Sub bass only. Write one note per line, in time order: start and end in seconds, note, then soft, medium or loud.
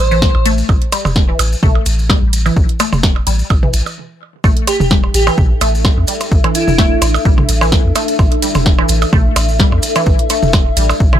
0.00 0.28 A1 medium
0.35 0.63 A1 loud
0.69 0.77 A1 loud
1.05 1.33 E1 medium
1.39 1.55 A1 loud
1.63 1.79 A1 medium
1.86 2.15 A1 medium
2.22 2.50 A1 loud
2.56 2.65 A1 loud
2.93 3.21 E1 medium
3.27 3.43 A1 medium
3.50 3.66 A1 medium
3.74 3.82 A1 medium
4.44 4.52 A1 loud
4.80 5.08 E1 medium
5.14 5.30 A1 loud
5.38 5.54 A1 medium
5.61 5.90 A1 medium
5.97 6.04 E2 medium
6.32 6.40 A1 loud
6.68 6.96 E1 medium
7.02 7.18 A1 medium
7.25 7.41 A1 medium
7.49 7.78 A1 medium
7.85 7.92 E2 medium
8.19 8.27 A1 loud
8.55 8.83 E1 medium
8.89 9.05 A1 loud
9.13 9.29 A1 medium
9.36 9.65 A1 medium
9.72 9.79 E2 medium
10.06 10.15 A1 loud
10.43 10.71 E1 medium
10.77 10.93 A1 medium
11.00 11.16 A1 medium